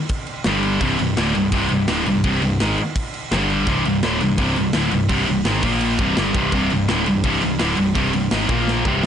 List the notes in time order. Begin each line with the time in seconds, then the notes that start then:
0.09 kick, crash
0.27 crash
0.44 G1 G2 D3 G3, snare, crash
0.63 crash
0.80 C1 C2 G2 C3, kick, crash
0.99 C1 C2 G2, crash
1.17 D1 D2 A2 D3, snare, crash
1.35 C1 C2 G2, crash
1.52 C1 C2 G2 C3, kick, crash
1.69 C1 C2 G2, crash
1.88 D1 D2 A2 D3, snare, crash
2.06 C1 C2 G2, crash
2.24 C1 C2 G2 C3, kick, crash
2.42 C1 C2 G2, crash
2.60 G#1 G#2 D#3 G#3, snare, crash
2.78 crash
2.96 kick, crash
3.14 crash
3.32 G1 G2 D3 G3, snare, crash
3.50 crash
3.67 C1 C2 G2 C3, kick, crash
3.85 C1 C2 G2, crash
4.03 D1 D2 A2 D3, snare, crash
4.21 C1 C2 G2, crash
4.38 C1 C2 G2 C3, kick, crash
4.56 C1 C2 G2, crash
4.73 D1 D2 A2 D3, snare, crash
4.91 C1 C2 G2, crash
5.09 C1 C2 G2 C3, kick, crash
5.27 C1 C2 G2, crash
5.45 G#1 G#2 D#3 G#3, snare, crash
5.63 A#1 A#2 F3 A#3, kick, crash
5.81 crash
5.99 C1 C2 G2 C3, kick, crash
6.17 G1 G2 D3 G3, snare, crash
6.35 C1 C2 G2 C3, kick, crash
6.52 C1 C2 G2 C3, kick, crash
6.70 C1 C2 G2, crash
6.88 D1 D2 A2 D3, snare, crash
7.06 C1 C2 G2, crash
7.24 C1 C2 G2 C3, kick, crash
7.42 C1 C2 G2, crash
7.59 D1 D2 A2 D3, snare, crash
7.77 C1 C2 G2, crash
7.95 C1 C2 G2 C3, kick, crash
8.13 C1 C2 G2, crash
8.31 G#1 G#2 D#3 G#3, snare, crash
8.49 A#1 A#2 F3 A#3, kick, crash
8.68 snare
8.85 C1 C2 G2 C3, kick